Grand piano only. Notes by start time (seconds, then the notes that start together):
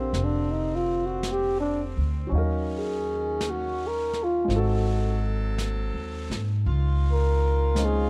Already playing: A#3 C4 D4 F4 G4 A4 A#4
2.27 F#3 C#4
2.32 D#4 F5
2.38 A#4
4.45 G#3 C4
4.50 D#4 F#4
4.56 A4
7.75 G#3 C4 C#4 D#4
7.79 F4